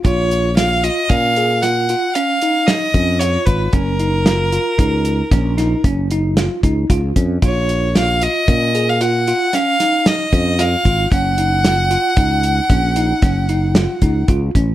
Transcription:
<<
  \new Staff \with { instrumentName = "Violin" } { \time 7/4 \key ais \phrygian \tempo 4 = 114 cis''4 eis''8 dis''8 eis''4 fis''4 eis''4 dis''4 cis''8 b'8 | ais'1 r2. | cis''4 eis''8 dis''4~ dis''16 eis''16 fis''4 eis''4 dis''4 eis''4 | fis''1. r4 | }
  \new Staff \with { instrumentName = "Tine electric piano" } { \time 7/4 \key ais \phrygian eis'4 eis'8 eis'8 cis'8 gis'8 eis'8 eis'8 cis'8 dis'4 cis'8 eis'8 eis'8 | cis'8 dis'8 eis'8 eis'8 dis'4 cis'8 dis'8 cis'8 dis'8 eis'8 dis'8 eis'8 cis'8 | eis'4 eis'8 eis'8 cis'8 gis'8 eis'8 eis'8 cis'8 dis'4 cis'8 eis'8 eis'8 | cis'8 dis'8 eis'8 eis'8 dis'4 cis'8 dis'8 cis'8 dis'8 eis'8 dis'8 eis'8 cis'8 | }
  \new Staff \with { instrumentName = "Fretless electric bass" } { \clef bass \time 7/4 \key ais \phrygian ais,,2 ais,2 r4. eis,4 gis,,8 | fis,,2 cis,4 ais,,4 fis,,4. cis,8 cis,8 eis,8 | ais,,2 ais,2 r4. eis,4 gis,,8 | fis,,2 cis,4 ais,,4 fis,,4. cis,8 cis,8 a,,8 | }
  \new DrumStaff \with { instrumentName = "Drums" } \drummode { \time 7/4 <hh bd>8 hh8 <hh sn>8 hh8 <hh bd sn>8 hh8 <hh sn>8 hh8 hh8 hh8 <hh sn>8 <hh bd>8 hh8 <hh bd>8 | <hh bd>8 hh8 <hh sn>8 hh8 <hh bd>8 hh8 <hh bd sn>8 <hh sn>8 <hh bd>8 hh8 <hh sn>8 <hh bd>8 <hh bd>8 <hh bd>8 | <hh bd>8 hh8 <hh sn>8 hh8 <hh bd>8 hh8 hh8 hh8 <hh sn>8 <hh sn>8 <hh sn>8 <hh bd>8 <hh sn>8 <hh bd>8 | <hh bd>8 hh8 <hh sn>8 hh8 <hh bd>8 hh8 <hh bd>8 hh8 <hh bd sn>8 hh8 <hh sn>8 <hh bd>8 <hh bd>8 <hh bd>8 | }
>>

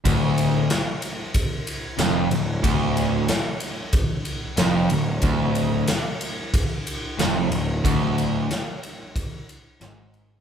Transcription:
<<
  \new Staff \with { instrumentName = "Overdriven electric guitar" } { \clef bass \time 4/4 \key c \lydian \tempo 4 = 92 d,4 r2 f,8 d,8 | d,4 r2 f,8 d,8 | d,4 r2 f,8 d,8 | d,4 r2 aes,4 | }
  \new Staff \with { instrumentName = "Overdriven electric guitar" } { \clef bass \time 4/4 \key c \lydian d,4 r2 f,8 d,8 | d,4 r2 f,8 d,8 | d,4 r2 f,8 d,8 | d,4 r2 aes,4 | }
  \new Staff \with { instrumentName = "Picked electric bass" } { \clef bass \time 4/4 \key c \lydian d,,4 r2 f,,8 d,,8 | d,,4 r2 f,,8 d,,8 | d,,4 r2 f,,8 d,,8 | d,,4 r2 aes,,4 | }
  \new DrumStaff \with { instrumentName = "Drums" } \drummode { \time 4/4 <bd cymr>8 cymr8 <cymr sn>8 cymr8 <bd cymr>8 cymr8 <cymr sn>8 cymr8 | <bd cymr>8 cymr8 <cymr sn>8 cymr8 <bd cymr>8 cymr8 <cymr sn>8 cymr8 | <bd cymr>8 cymr8 <cymr sn>8 cymr8 <bd cymr>8 cymr8 <cymr sn>8 cymr8 | <bd cymr>8 cymr8 <cymr sn>8 cymr8 <bd cymr>8 cymr8 <cymr sn>8 cymr8 | }
>>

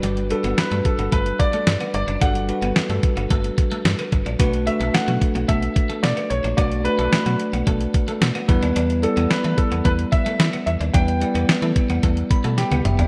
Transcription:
<<
  \new Staff \with { instrumentName = "Grand piano" } { \time 4/4 \key b \minor \tempo 4 = 110 r8 a'8 b'8 a'8 b'8 d''4 d''8 | fis''2 r2 | r8 e''8 fis''4 e''4 d''8 cis''8 | d''8 b'4 r2 r8 |
r8 a'8 b'8 a'8 b'8 e''4 e''8 | g''2 r4 g'4 | }
  \new Staff \with { instrumentName = "Tine electric piano" } { \time 4/4 \key b \minor <g d' fis' b'>8 <g d' fis' b'>4. r2 | <g d' fis' a'>8 <g d' fis' b'>4. r2 | <a d' fis' b'>8 <a d' fis' a'>4. r2 | <a d' fis' d''>8 <a d' fis' b'>4. r4. <g b e' b'>8~ |
<g b e' b'>8 <g b e' d''>4. r2 | <g b e' b'>8 <g b e' d''>4. r8 b''8 g''8 e''8 | }
  \new Staff \with { instrumentName = "Clean electric guitar" } { \time 4/4 \key b \minor g16 r8 b16 r16 a16 r16 b16 a16 r8 a16 r16 b16 r16 d'16 | g16 r8 b16 r16 a16 r16 b16 a16 r8 a16 r16 b16 r16 d'16 | b16 r8 a16 r16 fis16 r16 b16 a16 r8 a16 r16 b16 r16 d'16 | b16 r8 a16 r16 fis16 r16 b16 a16 r8 a16 r16 b16 r16 d'16 |
d'16 r8 b16 r16 a16 r16 b16 a16 r8 a16 r16 b16 r16 d'16 | d'16 r8 b16 r16 a16 r16 b16 a16 r8 a16 r16 b16 r16 d'16 | }
  \new Staff \with { instrumentName = "FM bass" } { \clef bass \time 4/4 \key b \minor g,,8. g,,16 r16 g,16 r16 g,,16 g,,8 r8 g,16 r16 g,,16 fis,,16 | g,,8. g,,16 r16 g,16 r16 g,,16 g,,8 r8 g,16 r16 g,,16 ais,,16 | b,,8. b,,16 r16 b,16 r16 b,,16 b,,8 r8 b,16 r16 b,,16 ais,,16 | b,,8. b,,16 b,16 b,16 r16 b,,16 b,,8 r8 b,16 r16 e,16 dis,16 |
e,8. e,16 r16 e16 r16 e,16 e,8 r8 e16 r16 e,16 dis,16 | e,8. e,16 e16 e16 r16 e,16 e,8 b,16 b,8 d,16 fis,,8 | }
  \new DrumStaff \with { instrumentName = "Drums" } \drummode { \time 4/4 hh16 hh16 hh16 hh16 <hh sn>16 hh16 <hh bd>16 hh16 <hh bd>16 hh16 <hh bd>16 hh16 <hh sn>16 hh16 hh16 hh16 | <hh bd>16 hh16 hh16 hh16 <hh sn>16 hh16 <hh bd>16 hh16 <hh bd>16 hh16 <hh bd>16 hh16 <hh sn>16 hh16 <hh bd>16 hh16 | <hh bd>16 hh16 hh16 hh16 <hh sn>16 hh16 <hh bd>16 hh16 <hh bd>16 hh16 <hh bd>16 hh16 <hh sn>16 hh16 hh16 hh16 | <hh bd>16 hh16 hh16 hh16 <hh sn>16 hh16 hh16 hh16 <hh bd>16 hh16 <hh bd>16 hh16 <hh sn>16 hh16 <hh bd>16 hh16 |
hh16 hh16 hh16 hh16 <hh sn>16 hh16 <hh bd>16 hh16 <hh bd>16 hh16 <hh bd>16 hh16 <hh sn>16 hh16 hh16 hh16 | <hh bd>16 hh16 hh16 hh16 <hh sn>16 hh16 <hh bd>16 hh16 <hh bd>16 hh16 <hh bd>16 hh16 <hh sn>16 <hh tommh>16 <hh toml>16 <hh tomfh>16 | }
>>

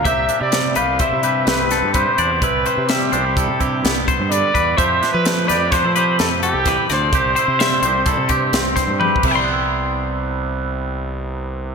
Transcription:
<<
  \new Staff \with { instrumentName = "Clean electric guitar" } { \time 5/4 \key c \major \tempo 4 = 128 e''4 r8 b'8 c''8 b'4 a'8 b'8 d''8~ | d''8 c''8 e''8 c''8 a'8 g'4 c''8 b'8 b'8 | e''4 r8 b'8 c''8 b'4 a'8 b'8 d''8~ | d''8 c''8 e''8 c''8 a'8 g'4 c''8 b'8 <e'' g'' c'''>8~ |
<e'' g'' c'''>1~ <e'' g'' c'''>4 | }
  \new Staff \with { instrumentName = "Trumpet" } { \time 5/4 \key c \major e''8. d''8. f''8 e''4 b'4 c''4 | b'4 g'2~ g'8 r8 d''4 | c''8. b'8. d''8 c''8 c''8 a'8 g'4 c''8~ | c''1 r4 |
r1 r4 | }
  \new Staff \with { instrumentName = "Clean electric guitar" } { \time 5/4 \key c \major << { g'8 d'16 e'8. g'8 e'8 g'8 c'4 g'8 d'16 e'16 | e'8 e'4 d'16 e'16 e'8 e'8 b2 | g'8 d'16 e'8. g'8 d'16 e'16 g'8 c'2 | g'8 e'4 g'8 e'8 g'8 c'4 g'8 <g b e'>8~ |
<g b e'>1~ <g b e'>4 | } \\ { c4 g4. g,4. c4 | c4 g4. g,4. d8 e8 | f4 a4. c4. e8 d8 | c4 g4. g,4. c8 c8~ |
c1~ c4 | } >> }
  \new Staff \with { instrumentName = "Fingered electric bass" } { \clef bass \time 5/4 \key c \major c,8 r16 c8. c,8. c8. c,8. g,8 r16 e,8 | c,8 r16 c8. c,8. c8. c,8. g,8 r16 e,8 | f,8 r16 f8. f,8. f8. f,8. c,8 r16 d,8 | c,8 r16 c8. c,8. c8. c,8. g,8 r16 c,8~ |
c,1~ c,4 | }
  \new DrumStaff \with { instrumentName = "Drums" } \drummode { \time 5/4 <hh bd>8 hh8 <hh sn>8 hh8 <hh bd>8 hh8 <hh sn>8 <hh sn>8 <hh bd>8 hh8 | <hh bd>8 hh8 <hh sn>8 hh8 <hh bd>8 <hh bd>8 <hh sn>8 <hh bd>8 hh8 <hh bd>8 | <hh bd>8 <hh sn>8 <hh sn>8 <hh sn>8 <hh bd sn>8 hh8 <hh sn>8 hh8 <hh bd sn>8 <hh sn>8 | <hh bd>8 hh8 <hh sn>8 hh8 <hh bd>8 <hh bd>8 <hh sn>8 <hh bd sn>8 \tuplet 3/2 { tommh16 r16 bd16 <cymc bd>16 r16 r16 } |
r4 r4 r4 r4 r4 | }
>>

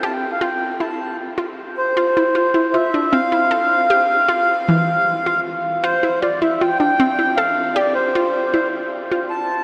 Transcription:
<<
  \new Staff \with { instrumentName = "Accordion" } { \time 5/4 \key f \major \tempo 4 = 155 a''16 g''8 f''16 g''4 a''4 r4. c''8~ | c''2 e''4 f''2~ | f''1 r4 | c''4 d''8 e''8 g''8 g''4. f''4 |
d''8 c''2 r4. a''4 | }
  \new Staff \with { instrumentName = "Synth arpeggio sound" } { \time 5/4 \key f \major g'4 f'4 e'4 r8 f'4 r8 | f'8 e'8 f'8 e'8 f'8 d'8 c'8 e'8 a'4 | g'4 f'4 e4 r8 f'4 r8 | f'8 e'8 f'8 e'8 f'8 d'8 c'8 e'8 a'4 |
g'4 f'4 e'4 r8 f'4 r8 | }
>>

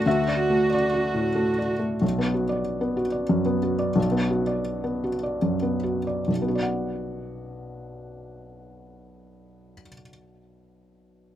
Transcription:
<<
  \new Staff \with { instrumentName = "Cello" } { \time 3/4 \key b \minor \tempo 4 = 78 fis'2~ fis'8 r8 | r2. | r2. | r2. |
r2. | }
  \new Staff \with { instrumentName = "Felt piano" } { \time 3/4 \key b \minor << { e''4 d''4. r8 | r2. | r2. | <b,, b, b fis' d'' fis''>2.~ |
<b,, b, b fis' d'' fis''>2. | } \\ { \tuplet 3/2 { <d, a>8 d''8 a8 d''8 fis'8 a,8 a8 d''8 a8 } | b,,16 b16 fis'16 d''8 b16 fis'16 d''16 fis,16 b16 fis'16 d''16 | b,,16 b16 fis'16 d''8 b16 fis'16 d''16 fis,16 b16 fis'16 d''16 | r2. |
r2. | } >> }
  \new Staff \with { instrumentName = "Viola" } { \time 3/4 \key b \minor fis'2~ fis'8 r8 | r2. | r2. | r2. |
r2. | }
>>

